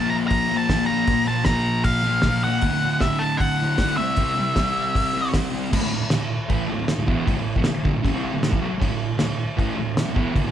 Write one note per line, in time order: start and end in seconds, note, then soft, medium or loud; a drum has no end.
0.00 0.67 A#2 medium
0.00 0.52 F3 loud
0.00 0.48 A#3 loud
0.00 0.12 A5 loud
0.10 0.15 A#5 loud
0.28 0.56 A#5 loud
0.28 kick loud
0.28 open hi-hat medium
0.49 0.69 F3 medium
0.49 0.70 A#3 medium
0.57 0.86 A5 loud
0.68 1.06 A#2 medium
0.68 0.91 F3 medium
0.68 0.88 A#3 medium
0.68 kick loud
0.68 snare loud
0.68 open hi-hat medium
0.86 1.09 A#3 medium
0.86 1.27 A#5 loud
0.92 1.07 F3 medium
1.07 1.44 A#2 loud
1.07 1.28 F3 medium
1.07 1.26 A#3 loud
1.07 kick loud
1.07 open hi-hat medium
1.27 1.46 F3 medium
1.27 1.48 A#3 medium
1.27 1.44 A5 loud
1.44 2.21 A#2 medium
1.44 2.06 F3 loud
1.44 1.84 A#5 loud
1.44 kick loud
1.44 snare loud
1.44 open hi-hat medium
1.49 2.03 A#3 loud
1.84 2.43 F5 loud
1.84 kick loud
1.84 open hi-hat medium
2.04 2.23 F3 medium
2.04 2.25 A#3 medium
2.22 2.61 A#2 medium
2.22 2.44 F3 medium
2.22 kick loud
2.22 snare loud
2.22 open hi-hat medium
2.27 2.41 A#3 medium
2.42 2.63 F3 medium
2.42 2.61 A#3 medium
2.42 3.01 F#5 loud
2.62 3.01 D2 loud
2.62 2.84 A2 loud
2.62 2.80 D3 loud
2.62 kick loud
2.62 open hi-hat medium
2.81 3.03 A2 medium
2.81 3.03 D3 medium
3.01 3.78 D2 loud
3.01 3.61 A2 loud
3.01 3.22 E5 loud
3.01 kick loud
3.01 snare loud
3.01 open hi-hat medium
3.05 3.58 D3 loud
3.19 3.40 A5 loud
3.37 3.97 F#5 loud
3.37 kick loud
3.37 open hi-hat medium
3.59 3.79 A2 medium
3.59 3.81 D3 medium
3.78 3.97 D2 medium
3.78 3.98 A2 medium
3.78 3.97 D3 medium
3.78 kick loud
3.78 snare loud
3.78 open hi-hat medium
3.97 4.16 G3 medium
3.97 4.18 C4 medium
3.97 5.29 E5 medium
4.01 4.14 C3 medium
4.16 4.53 C3 loud
4.16 4.38 G3 loud
4.16 4.34 C4 loud
4.16 kick loud
4.16 open hi-hat medium
4.36 4.55 G3 medium
4.36 4.56 C4 medium
4.54 5.31 C3 medium
4.54 5.15 G3 loud
4.54 5.12 C4 loud
4.54 kick loud
4.54 snare loud
4.54 open hi-hat medium
4.95 kick loud
4.95 open hi-hat medium
5.13 5.33 G3 medium
5.13 5.33 C4 medium
5.32 5.70 C3 medium
5.32 5.53 G3 medium
5.32 5.50 C4 medium
5.32 kick loud
5.32 snare loud
5.32 open hi-hat medium
5.51 5.71 G3 medium
5.51 5.70 C4 medium
5.71 5.81 D2 loud
5.71 5.81 A2 loud
5.71 kick loud
5.71 crash loud
5.71 crash medium
5.82 5.98 D2 medium
5.82 5.98 A2 medium
6.10 6.26 D2 medium
6.10 6.27 A2 medium
6.10 snare loud
6.10 crash medium
6.48 6.68 A2 loud
6.48 6.68 E3 loud
6.48 6.68 A3 loud
6.48 kick loud
6.48 crash medium
6.68 6.84 D2 medium
6.68 6.84 A2 medium
6.88 snare loud
6.88 crash medium
6.98 7.07 D2 medium
6.98 7.07 A2 medium
7.07 7.26 E2 loud
7.07 7.26 B2 loud
7.07 7.27 E3 loud
7.07 kick loud
7.26 7.35 D2 loud
7.26 7.36 A2 loud
7.26 kick loud
7.26 crash medium
7.37 7.52 D2 medium
7.37 7.52 A2 medium
7.56 7.66 E2 medium
7.56 7.66 B2 loud
7.56 kick loud
7.64 muted distorted electric guitar stroke medium
7.64 snare loud
7.64 crash medium
7.83 7.93 G2 loud
7.83 7.93 D3 loud
7.83 kick loud
7.93 8.02 D2 medium
7.93 8.03 A2 medium
8.03 8.11 F#2 loud
8.03 8.12 C#3 loud
8.03 kick loud
8.03 crash medium
8.12 8.31 C3 loud
8.12 8.32 G3 loud
8.12 8.32 C4 loud
8.32 8.48 D2 medium
8.32 8.48 A2 medium
8.43 snare loud
8.43 crash medium
8.51 8.60 A2 loud
8.51 8.61 E3 loud
8.51 kick loud
8.60 8.70 B2 loud
8.60 8.71 F#3 loud
8.70 muted distorted electric guitar stroke medium
8.80 8.88 D2 loud
8.80 8.89 A2 loud
8.80 kick loud
8.80 crash medium
8.90 9.06 D2 medium
8.90 9.06 A2 medium
9.18 9.34 D2 medium
9.18 9.35 A2 medium
9.18 snare loud
9.18 crash medium
9.57 9.75 A2 loud
9.57 9.76 E3 loud
9.57 9.77 A3 loud
9.57 kick loud
9.57 crash medium
9.76 9.92 D2 medium
9.76 9.92 A2 medium
9.97 snare loud
9.97 crash medium
10.05 10.14 D2 medium
10.05 10.14 A2 medium
10.14 10.34 E2 loud
10.14 10.34 B2 loud
10.14 10.34 E3 loud
10.14 kick loud
10.34 10.43 D2 loud
10.34 10.43 A2 loud
10.34 kick loud
10.34 crash medium
10.44 10.51 D2 medium
10.44 10.51 A2 medium